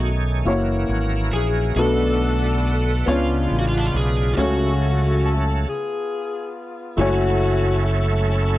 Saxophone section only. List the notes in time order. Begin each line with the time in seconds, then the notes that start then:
Already playing: A3 D#4 F#4
1.33 G#4
1.78 D4 F#4 A4
3.09 G#3 B3 F4
3.96 G#4
4.39 A3 C#4 F#4
5.25 A4
5.69 B3 F4 G#4
6.98 A3 C#4 F#4
7.85 A4
8.29 C#4 E4 A4